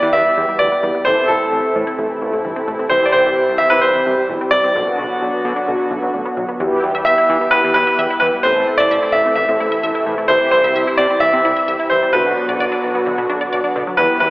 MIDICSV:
0, 0, Header, 1, 6, 480
1, 0, Start_track
1, 0, Key_signature, 1, "minor"
1, 0, Tempo, 461538
1, 1108, Time_signature, 4, 2, 24, 8
1, 14872, End_track
2, 0, Start_track
2, 0, Title_t, "Grand piano"
2, 0, Program_c, 0, 0
2, 0, Note_on_c, 0, 74, 95
2, 133, Note_on_c, 0, 76, 107
2, 148, Note_off_c, 0, 74, 0
2, 586, Note_off_c, 0, 76, 0
2, 612, Note_on_c, 0, 74, 98
2, 1090, Note_on_c, 0, 72, 97
2, 1114, Note_off_c, 0, 74, 0
2, 1330, Note_on_c, 0, 69, 81
2, 1346, Note_off_c, 0, 72, 0
2, 1785, Note_off_c, 0, 69, 0
2, 3011, Note_on_c, 0, 72, 93
2, 3178, Note_on_c, 0, 74, 70
2, 3191, Note_off_c, 0, 72, 0
2, 3248, Note_on_c, 0, 72, 95
2, 3259, Note_off_c, 0, 74, 0
2, 3725, Note_on_c, 0, 76, 105
2, 3752, Note_off_c, 0, 72, 0
2, 3846, Note_on_c, 0, 71, 90
2, 3860, Note_off_c, 0, 76, 0
2, 3966, Note_on_c, 0, 72, 89
2, 3981, Note_off_c, 0, 71, 0
2, 4422, Note_off_c, 0, 72, 0
2, 4688, Note_on_c, 0, 74, 111
2, 6336, Note_off_c, 0, 74, 0
2, 7330, Note_on_c, 0, 76, 107
2, 7808, Note_on_c, 0, 71, 96
2, 7833, Note_off_c, 0, 76, 0
2, 8035, Note_off_c, 0, 71, 0
2, 8051, Note_on_c, 0, 71, 94
2, 8510, Note_off_c, 0, 71, 0
2, 8526, Note_on_c, 0, 71, 89
2, 8582, Note_off_c, 0, 71, 0
2, 8768, Note_on_c, 0, 72, 98
2, 9127, Note_on_c, 0, 74, 107
2, 9149, Note_off_c, 0, 72, 0
2, 9488, Note_on_c, 0, 76, 99
2, 9508, Note_off_c, 0, 74, 0
2, 9714, Note_off_c, 0, 76, 0
2, 9730, Note_on_c, 0, 76, 95
2, 10417, Note_off_c, 0, 76, 0
2, 10691, Note_on_c, 0, 72, 99
2, 10918, Note_off_c, 0, 72, 0
2, 10933, Note_on_c, 0, 72, 96
2, 11414, Note_on_c, 0, 74, 101
2, 11435, Note_off_c, 0, 72, 0
2, 11650, Note_on_c, 0, 76, 109
2, 11668, Note_off_c, 0, 74, 0
2, 12373, Note_on_c, 0, 72, 88
2, 12401, Note_off_c, 0, 76, 0
2, 12613, Note_on_c, 0, 71, 88
2, 12627, Note_off_c, 0, 72, 0
2, 13298, Note_off_c, 0, 71, 0
2, 14531, Note_on_c, 0, 71, 89
2, 14755, Note_off_c, 0, 71, 0
2, 14771, Note_on_c, 0, 71, 87
2, 14872, Note_off_c, 0, 71, 0
2, 14872, End_track
3, 0, Start_track
3, 0, Title_t, "Analog polysynth"
3, 0, Program_c, 1, 90
3, 0, Note_on_c, 1, 59, 66
3, 0, Note_on_c, 1, 64, 59
3, 0, Note_on_c, 1, 67, 75
3, 1069, Note_off_c, 1, 59, 0
3, 1069, Note_off_c, 1, 64, 0
3, 1069, Note_off_c, 1, 67, 0
3, 1106, Note_on_c, 1, 60, 66
3, 1107, Note_on_c, 1, 64, 63
3, 1107, Note_on_c, 1, 69, 73
3, 2988, Note_off_c, 1, 60, 0
3, 2989, Note_off_c, 1, 64, 0
3, 2989, Note_off_c, 1, 69, 0
3, 3027, Note_on_c, 1, 64, 63
3, 3028, Note_on_c, 1, 60, 69
3, 3028, Note_on_c, 1, 67, 73
3, 4909, Note_off_c, 1, 60, 0
3, 4909, Note_off_c, 1, 64, 0
3, 4909, Note_off_c, 1, 67, 0
3, 4948, Note_on_c, 1, 59, 70
3, 4948, Note_on_c, 1, 62, 61
3, 4948, Note_on_c, 1, 66, 74
3, 6829, Note_off_c, 1, 59, 0
3, 6829, Note_off_c, 1, 62, 0
3, 6829, Note_off_c, 1, 66, 0
3, 6866, Note_on_c, 1, 64, 76
3, 6866, Note_on_c, 1, 67, 91
3, 6867, Note_on_c, 1, 59, 77
3, 8748, Note_off_c, 1, 59, 0
3, 8748, Note_off_c, 1, 64, 0
3, 8748, Note_off_c, 1, 67, 0
3, 8787, Note_on_c, 1, 64, 64
3, 8787, Note_on_c, 1, 69, 76
3, 8788, Note_on_c, 1, 60, 68
3, 10669, Note_off_c, 1, 60, 0
3, 10669, Note_off_c, 1, 64, 0
3, 10669, Note_off_c, 1, 69, 0
3, 10706, Note_on_c, 1, 60, 69
3, 10706, Note_on_c, 1, 64, 61
3, 10707, Note_on_c, 1, 67, 73
3, 12588, Note_off_c, 1, 60, 0
3, 12588, Note_off_c, 1, 64, 0
3, 12588, Note_off_c, 1, 67, 0
3, 12626, Note_on_c, 1, 59, 67
3, 12626, Note_on_c, 1, 62, 61
3, 12626, Note_on_c, 1, 66, 75
3, 14508, Note_off_c, 1, 59, 0
3, 14508, Note_off_c, 1, 62, 0
3, 14508, Note_off_c, 1, 66, 0
3, 14547, Note_on_c, 1, 64, 63
3, 14548, Note_on_c, 1, 59, 69
3, 14548, Note_on_c, 1, 67, 77
3, 14872, Note_off_c, 1, 59, 0
3, 14872, Note_off_c, 1, 64, 0
3, 14872, Note_off_c, 1, 67, 0
3, 14872, End_track
4, 0, Start_track
4, 0, Title_t, "Synth pluck"
4, 0, Program_c, 2, 84
4, 29, Note_on_c, 2, 64, 80
4, 100, Note_off_c, 2, 64, 0
4, 148, Note_on_c, 2, 52, 91
4, 219, Note_off_c, 2, 52, 0
4, 268, Note_on_c, 2, 52, 71
4, 339, Note_off_c, 2, 52, 0
4, 388, Note_on_c, 2, 52, 78
4, 459, Note_off_c, 2, 52, 0
4, 508, Note_on_c, 2, 55, 73
4, 579, Note_off_c, 2, 55, 0
4, 627, Note_on_c, 2, 52, 85
4, 698, Note_off_c, 2, 52, 0
4, 747, Note_on_c, 2, 59, 80
4, 818, Note_off_c, 2, 59, 0
4, 866, Note_on_c, 2, 55, 82
4, 938, Note_off_c, 2, 55, 0
4, 986, Note_on_c, 2, 59, 77
4, 1058, Note_off_c, 2, 59, 0
4, 1106, Note_on_c, 2, 52, 96
4, 1178, Note_off_c, 2, 52, 0
4, 1225, Note_on_c, 2, 52, 73
4, 1297, Note_off_c, 2, 52, 0
4, 1827, Note_on_c, 2, 52, 79
4, 1898, Note_off_c, 2, 52, 0
4, 1946, Note_on_c, 2, 64, 82
4, 2017, Note_off_c, 2, 64, 0
4, 2065, Note_on_c, 2, 52, 88
4, 2137, Note_off_c, 2, 52, 0
4, 2186, Note_on_c, 2, 52, 71
4, 2258, Note_off_c, 2, 52, 0
4, 2306, Note_on_c, 2, 52, 80
4, 2378, Note_off_c, 2, 52, 0
4, 2426, Note_on_c, 2, 57, 70
4, 2498, Note_off_c, 2, 57, 0
4, 2546, Note_on_c, 2, 52, 86
4, 2618, Note_off_c, 2, 52, 0
4, 2666, Note_on_c, 2, 60, 80
4, 2737, Note_off_c, 2, 60, 0
4, 2785, Note_on_c, 2, 57, 81
4, 2857, Note_off_c, 2, 57, 0
4, 2906, Note_on_c, 2, 60, 76
4, 2978, Note_off_c, 2, 60, 0
4, 3026, Note_on_c, 2, 52, 96
4, 3098, Note_off_c, 2, 52, 0
4, 3147, Note_on_c, 2, 52, 75
4, 3218, Note_off_c, 2, 52, 0
4, 3746, Note_on_c, 2, 52, 77
4, 3817, Note_off_c, 2, 52, 0
4, 3865, Note_on_c, 2, 64, 82
4, 3937, Note_off_c, 2, 64, 0
4, 3986, Note_on_c, 2, 52, 91
4, 4058, Note_off_c, 2, 52, 0
4, 4106, Note_on_c, 2, 52, 73
4, 4178, Note_off_c, 2, 52, 0
4, 4226, Note_on_c, 2, 52, 80
4, 4297, Note_off_c, 2, 52, 0
4, 4345, Note_on_c, 2, 55, 73
4, 4417, Note_off_c, 2, 55, 0
4, 4466, Note_on_c, 2, 52, 86
4, 4538, Note_off_c, 2, 52, 0
4, 4587, Note_on_c, 2, 60, 79
4, 4659, Note_off_c, 2, 60, 0
4, 4706, Note_on_c, 2, 55, 82
4, 4778, Note_off_c, 2, 55, 0
4, 4826, Note_on_c, 2, 60, 77
4, 4898, Note_off_c, 2, 60, 0
4, 4946, Note_on_c, 2, 50, 96
4, 5017, Note_off_c, 2, 50, 0
4, 5066, Note_on_c, 2, 50, 69
4, 5138, Note_off_c, 2, 50, 0
4, 5666, Note_on_c, 2, 50, 79
4, 5737, Note_off_c, 2, 50, 0
4, 5785, Note_on_c, 2, 62, 82
4, 5857, Note_off_c, 2, 62, 0
4, 5905, Note_on_c, 2, 50, 88
4, 5977, Note_off_c, 2, 50, 0
4, 6025, Note_on_c, 2, 50, 73
4, 6097, Note_off_c, 2, 50, 0
4, 6145, Note_on_c, 2, 50, 80
4, 6217, Note_off_c, 2, 50, 0
4, 6264, Note_on_c, 2, 54, 73
4, 6337, Note_off_c, 2, 54, 0
4, 6385, Note_on_c, 2, 50, 83
4, 6457, Note_off_c, 2, 50, 0
4, 6505, Note_on_c, 2, 59, 79
4, 6577, Note_off_c, 2, 59, 0
4, 6624, Note_on_c, 2, 54, 80
4, 6696, Note_off_c, 2, 54, 0
4, 6746, Note_on_c, 2, 59, 78
4, 6817, Note_off_c, 2, 59, 0
4, 6865, Note_on_c, 2, 52, 96
4, 6937, Note_off_c, 2, 52, 0
4, 7226, Note_on_c, 2, 76, 84
4, 7297, Note_off_c, 2, 76, 0
4, 7347, Note_on_c, 2, 76, 99
4, 7418, Note_off_c, 2, 76, 0
4, 7467, Note_on_c, 2, 64, 82
4, 7538, Note_off_c, 2, 64, 0
4, 7707, Note_on_c, 2, 59, 82
4, 7778, Note_off_c, 2, 59, 0
4, 7826, Note_on_c, 2, 52, 91
4, 7898, Note_off_c, 2, 52, 0
4, 7947, Note_on_c, 2, 59, 80
4, 8018, Note_off_c, 2, 59, 0
4, 8066, Note_on_c, 2, 64, 87
4, 8138, Note_off_c, 2, 64, 0
4, 8186, Note_on_c, 2, 76, 80
4, 8258, Note_off_c, 2, 76, 0
4, 8308, Note_on_c, 2, 76, 93
4, 8379, Note_off_c, 2, 76, 0
4, 8428, Note_on_c, 2, 64, 82
4, 8499, Note_off_c, 2, 64, 0
4, 8547, Note_on_c, 2, 52, 82
4, 8619, Note_off_c, 2, 52, 0
4, 8668, Note_on_c, 2, 55, 77
4, 8739, Note_off_c, 2, 55, 0
4, 8787, Note_on_c, 2, 52, 96
4, 8858, Note_off_c, 2, 52, 0
4, 9147, Note_on_c, 2, 76, 84
4, 9218, Note_off_c, 2, 76, 0
4, 9267, Note_on_c, 2, 76, 99
4, 9338, Note_off_c, 2, 76, 0
4, 9388, Note_on_c, 2, 64, 79
4, 9459, Note_off_c, 2, 64, 0
4, 9628, Note_on_c, 2, 60, 81
4, 9699, Note_off_c, 2, 60, 0
4, 9748, Note_on_c, 2, 52, 89
4, 9819, Note_off_c, 2, 52, 0
4, 9868, Note_on_c, 2, 60, 79
4, 9939, Note_off_c, 2, 60, 0
4, 9988, Note_on_c, 2, 64, 85
4, 10059, Note_off_c, 2, 64, 0
4, 10108, Note_on_c, 2, 76, 81
4, 10179, Note_off_c, 2, 76, 0
4, 10228, Note_on_c, 2, 76, 96
4, 10299, Note_off_c, 2, 76, 0
4, 10347, Note_on_c, 2, 64, 84
4, 10419, Note_off_c, 2, 64, 0
4, 10467, Note_on_c, 2, 52, 81
4, 10539, Note_off_c, 2, 52, 0
4, 10587, Note_on_c, 2, 57, 77
4, 10659, Note_off_c, 2, 57, 0
4, 10707, Note_on_c, 2, 52, 95
4, 10778, Note_off_c, 2, 52, 0
4, 11068, Note_on_c, 2, 76, 85
4, 11139, Note_off_c, 2, 76, 0
4, 11187, Note_on_c, 2, 76, 98
4, 11259, Note_off_c, 2, 76, 0
4, 11308, Note_on_c, 2, 64, 84
4, 11379, Note_off_c, 2, 64, 0
4, 11547, Note_on_c, 2, 60, 81
4, 11619, Note_off_c, 2, 60, 0
4, 11668, Note_on_c, 2, 52, 90
4, 11739, Note_off_c, 2, 52, 0
4, 11788, Note_on_c, 2, 60, 80
4, 11859, Note_off_c, 2, 60, 0
4, 11907, Note_on_c, 2, 64, 90
4, 11979, Note_off_c, 2, 64, 0
4, 12028, Note_on_c, 2, 76, 79
4, 12099, Note_off_c, 2, 76, 0
4, 12147, Note_on_c, 2, 76, 93
4, 12218, Note_off_c, 2, 76, 0
4, 12267, Note_on_c, 2, 64, 81
4, 12338, Note_off_c, 2, 64, 0
4, 12388, Note_on_c, 2, 52, 79
4, 12459, Note_off_c, 2, 52, 0
4, 12508, Note_on_c, 2, 55, 78
4, 12579, Note_off_c, 2, 55, 0
4, 12628, Note_on_c, 2, 50, 95
4, 12699, Note_off_c, 2, 50, 0
4, 12988, Note_on_c, 2, 74, 84
4, 13059, Note_off_c, 2, 74, 0
4, 13107, Note_on_c, 2, 74, 102
4, 13178, Note_off_c, 2, 74, 0
4, 13227, Note_on_c, 2, 62, 82
4, 13298, Note_off_c, 2, 62, 0
4, 13468, Note_on_c, 2, 59, 78
4, 13539, Note_off_c, 2, 59, 0
4, 13587, Note_on_c, 2, 50, 89
4, 13658, Note_off_c, 2, 50, 0
4, 13708, Note_on_c, 2, 59, 78
4, 13779, Note_off_c, 2, 59, 0
4, 13828, Note_on_c, 2, 62, 88
4, 13899, Note_off_c, 2, 62, 0
4, 13947, Note_on_c, 2, 74, 80
4, 14018, Note_off_c, 2, 74, 0
4, 14067, Note_on_c, 2, 74, 96
4, 14139, Note_off_c, 2, 74, 0
4, 14186, Note_on_c, 2, 62, 83
4, 14257, Note_off_c, 2, 62, 0
4, 14307, Note_on_c, 2, 50, 80
4, 14378, Note_off_c, 2, 50, 0
4, 14426, Note_on_c, 2, 54, 78
4, 14498, Note_off_c, 2, 54, 0
4, 14547, Note_on_c, 2, 52, 98
4, 14618, Note_off_c, 2, 52, 0
4, 14872, End_track
5, 0, Start_track
5, 0, Title_t, "Analog synth pad"
5, 0, Program_c, 3, 89
5, 0, Note_on_c, 3, 52, 79
5, 0, Note_on_c, 3, 55, 73
5, 0, Note_on_c, 3, 59, 74
5, 0, Note_on_c, 3, 67, 87
5, 1069, Note_off_c, 3, 59, 0
5, 1088, Note_off_c, 3, 52, 0
5, 1088, Note_off_c, 3, 55, 0
5, 1088, Note_off_c, 3, 67, 0
5, 1105, Note_on_c, 3, 57, 74
5, 1105, Note_on_c, 3, 64, 86
5, 1106, Note_on_c, 3, 48, 80
5, 1106, Note_on_c, 3, 52, 74
5, 3007, Note_off_c, 3, 57, 0
5, 3026, Note_on_c, 3, 55, 72
5, 4907, Note_off_c, 3, 64, 0
5, 4908, Note_off_c, 3, 48, 0
5, 4908, Note_off_c, 3, 52, 0
5, 4927, Note_off_c, 3, 55, 0
5, 4945, Note_on_c, 3, 66, 85
5, 4946, Note_on_c, 3, 54, 77
5, 4947, Note_on_c, 3, 50, 81
5, 4947, Note_on_c, 3, 59, 75
5, 6847, Note_off_c, 3, 54, 0
5, 6847, Note_off_c, 3, 66, 0
5, 6848, Note_off_c, 3, 50, 0
5, 6848, Note_off_c, 3, 59, 0
5, 6866, Note_on_c, 3, 59, 74
5, 6867, Note_on_c, 3, 52, 81
5, 6868, Note_on_c, 3, 55, 74
5, 6868, Note_on_c, 3, 67, 89
5, 8768, Note_off_c, 3, 52, 0
5, 8768, Note_off_c, 3, 55, 0
5, 8768, Note_off_c, 3, 59, 0
5, 8768, Note_off_c, 3, 67, 0
5, 8789, Note_on_c, 3, 48, 82
5, 8789, Note_on_c, 3, 52, 74
5, 8789, Note_on_c, 3, 57, 73
5, 8790, Note_on_c, 3, 64, 88
5, 10689, Note_off_c, 3, 57, 0
5, 10709, Note_on_c, 3, 55, 76
5, 12590, Note_off_c, 3, 48, 0
5, 12590, Note_off_c, 3, 52, 0
5, 12590, Note_off_c, 3, 64, 0
5, 12609, Note_off_c, 3, 55, 0
5, 12626, Note_on_c, 3, 59, 73
5, 12627, Note_on_c, 3, 50, 83
5, 12627, Note_on_c, 3, 66, 88
5, 12628, Note_on_c, 3, 54, 75
5, 14528, Note_off_c, 3, 50, 0
5, 14528, Note_off_c, 3, 54, 0
5, 14528, Note_off_c, 3, 66, 0
5, 14546, Note_on_c, 3, 52, 84
5, 14548, Note_on_c, 3, 67, 93
5, 14549, Note_on_c, 3, 55, 73
5, 14872, Note_off_c, 3, 52, 0
5, 14872, Note_off_c, 3, 55, 0
5, 14872, Note_off_c, 3, 59, 0
5, 14872, Note_off_c, 3, 67, 0
5, 14872, End_track
6, 0, Start_track
6, 0, Title_t, "Analog synth bass"
6, 0, Program_c, 4, 38
6, 26, Note_on_c, 4, 52, 97
6, 116, Note_off_c, 4, 52, 0
6, 148, Note_on_c, 4, 40, 105
6, 237, Note_off_c, 4, 40, 0
6, 388, Note_on_c, 4, 40, 101
6, 477, Note_off_c, 4, 40, 0
6, 627, Note_on_c, 4, 38, 86
6, 716, Note_off_c, 4, 38, 0
6, 867, Note_on_c, 4, 40, 92
6, 956, Note_off_c, 4, 40, 0
6, 1107, Note_on_c, 4, 33, 104
6, 1196, Note_off_c, 4, 33, 0
6, 1346, Note_on_c, 4, 33, 97
6, 1436, Note_off_c, 4, 33, 0
6, 1587, Note_on_c, 4, 33, 100
6, 1676, Note_off_c, 4, 33, 0
6, 1827, Note_on_c, 4, 45, 97
6, 1916, Note_off_c, 4, 45, 0
6, 2068, Note_on_c, 4, 33, 103
6, 2157, Note_off_c, 4, 33, 0
6, 2307, Note_on_c, 4, 33, 101
6, 2396, Note_off_c, 4, 33, 0
6, 2427, Note_on_c, 4, 33, 99
6, 2516, Note_off_c, 4, 33, 0
6, 2546, Note_on_c, 4, 31, 93
6, 2635, Note_off_c, 4, 31, 0
6, 2786, Note_on_c, 4, 33, 93
6, 2875, Note_off_c, 4, 33, 0
6, 3027, Note_on_c, 4, 36, 106
6, 3116, Note_off_c, 4, 36, 0
6, 3266, Note_on_c, 4, 36, 100
6, 3355, Note_off_c, 4, 36, 0
6, 3387, Note_on_c, 4, 36, 98
6, 3476, Note_off_c, 4, 36, 0
6, 3627, Note_on_c, 4, 36, 96
6, 3716, Note_off_c, 4, 36, 0
6, 3867, Note_on_c, 4, 48, 98
6, 3956, Note_off_c, 4, 48, 0
6, 3987, Note_on_c, 4, 36, 101
6, 4076, Note_off_c, 4, 36, 0
6, 4227, Note_on_c, 4, 36, 106
6, 4316, Note_off_c, 4, 36, 0
6, 4466, Note_on_c, 4, 35, 93
6, 4556, Note_off_c, 4, 35, 0
6, 4706, Note_on_c, 4, 36, 84
6, 4795, Note_off_c, 4, 36, 0
6, 4945, Note_on_c, 4, 35, 110
6, 5035, Note_off_c, 4, 35, 0
6, 5186, Note_on_c, 4, 35, 100
6, 5275, Note_off_c, 4, 35, 0
6, 5426, Note_on_c, 4, 35, 106
6, 5516, Note_off_c, 4, 35, 0
6, 5666, Note_on_c, 4, 47, 103
6, 5755, Note_off_c, 4, 47, 0
6, 5908, Note_on_c, 4, 35, 105
6, 5996, Note_off_c, 4, 35, 0
6, 6146, Note_on_c, 4, 35, 103
6, 6235, Note_off_c, 4, 35, 0
6, 6266, Note_on_c, 4, 35, 98
6, 6355, Note_off_c, 4, 35, 0
6, 6386, Note_on_c, 4, 33, 89
6, 6475, Note_off_c, 4, 33, 0
6, 6624, Note_on_c, 4, 35, 98
6, 6714, Note_off_c, 4, 35, 0
6, 6865, Note_on_c, 4, 40, 112
6, 6955, Note_off_c, 4, 40, 0
6, 7107, Note_on_c, 4, 40, 109
6, 7196, Note_off_c, 4, 40, 0
6, 7225, Note_on_c, 4, 40, 96
6, 7315, Note_off_c, 4, 40, 0
6, 7346, Note_on_c, 4, 40, 103
6, 7435, Note_off_c, 4, 40, 0
6, 7586, Note_on_c, 4, 52, 97
6, 7676, Note_off_c, 4, 52, 0
6, 7827, Note_on_c, 4, 40, 105
6, 7916, Note_off_c, 4, 40, 0
6, 7947, Note_on_c, 4, 52, 94
6, 8036, Note_off_c, 4, 52, 0
6, 8067, Note_on_c, 4, 40, 113
6, 8156, Note_off_c, 4, 40, 0
6, 8306, Note_on_c, 4, 40, 99
6, 8396, Note_off_c, 4, 40, 0
6, 8546, Note_on_c, 4, 40, 106
6, 8636, Note_off_c, 4, 40, 0
6, 8787, Note_on_c, 4, 33, 108
6, 8876, Note_off_c, 4, 33, 0
6, 8906, Note_on_c, 4, 33, 100
6, 8996, Note_off_c, 4, 33, 0
6, 9147, Note_on_c, 4, 33, 100
6, 9236, Note_off_c, 4, 33, 0
6, 9266, Note_on_c, 4, 33, 97
6, 9355, Note_off_c, 4, 33, 0
6, 9506, Note_on_c, 4, 33, 104
6, 9595, Note_off_c, 4, 33, 0
6, 9746, Note_on_c, 4, 33, 101
6, 9836, Note_off_c, 4, 33, 0
6, 9866, Note_on_c, 4, 45, 91
6, 9956, Note_off_c, 4, 45, 0
6, 9987, Note_on_c, 4, 33, 109
6, 10076, Note_off_c, 4, 33, 0
6, 10227, Note_on_c, 4, 33, 103
6, 10316, Note_off_c, 4, 33, 0
6, 10468, Note_on_c, 4, 45, 102
6, 10557, Note_off_c, 4, 45, 0
6, 10707, Note_on_c, 4, 36, 110
6, 10796, Note_off_c, 4, 36, 0
6, 10948, Note_on_c, 4, 36, 112
6, 11037, Note_off_c, 4, 36, 0
6, 11068, Note_on_c, 4, 36, 108
6, 11156, Note_off_c, 4, 36, 0
6, 11188, Note_on_c, 4, 36, 98
6, 11277, Note_off_c, 4, 36, 0
6, 11427, Note_on_c, 4, 48, 102
6, 11516, Note_off_c, 4, 48, 0
6, 11667, Note_on_c, 4, 36, 105
6, 11756, Note_off_c, 4, 36, 0
6, 11786, Note_on_c, 4, 48, 93
6, 11876, Note_off_c, 4, 48, 0
6, 11906, Note_on_c, 4, 36, 98
6, 11995, Note_off_c, 4, 36, 0
6, 12147, Note_on_c, 4, 36, 104
6, 12236, Note_off_c, 4, 36, 0
6, 12387, Note_on_c, 4, 36, 102
6, 12476, Note_off_c, 4, 36, 0
6, 12627, Note_on_c, 4, 35, 112
6, 12716, Note_off_c, 4, 35, 0
6, 12749, Note_on_c, 4, 35, 102
6, 12837, Note_off_c, 4, 35, 0
6, 12988, Note_on_c, 4, 35, 104
6, 13077, Note_off_c, 4, 35, 0
6, 13108, Note_on_c, 4, 35, 104
6, 13197, Note_off_c, 4, 35, 0
6, 13348, Note_on_c, 4, 35, 104
6, 13437, Note_off_c, 4, 35, 0
6, 13588, Note_on_c, 4, 35, 106
6, 13677, Note_off_c, 4, 35, 0
6, 13709, Note_on_c, 4, 47, 96
6, 13797, Note_off_c, 4, 47, 0
6, 13828, Note_on_c, 4, 35, 101
6, 13917, Note_off_c, 4, 35, 0
6, 14069, Note_on_c, 4, 35, 99
6, 14157, Note_off_c, 4, 35, 0
6, 14307, Note_on_c, 4, 47, 101
6, 14396, Note_off_c, 4, 47, 0
6, 14549, Note_on_c, 4, 40, 113
6, 14637, Note_off_c, 4, 40, 0
6, 14787, Note_on_c, 4, 40, 106
6, 14872, Note_off_c, 4, 40, 0
6, 14872, End_track
0, 0, End_of_file